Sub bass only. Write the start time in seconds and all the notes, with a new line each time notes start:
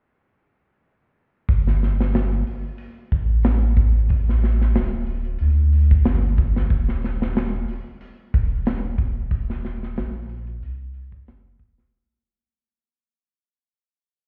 1.49 G1
3.12 A1
4.75 D1
5.40 D2
6.05 G1
6.71 D#1
8.34 D#1
9.97 A#1
10.63 C2
11.28 F#1
11.60 D#1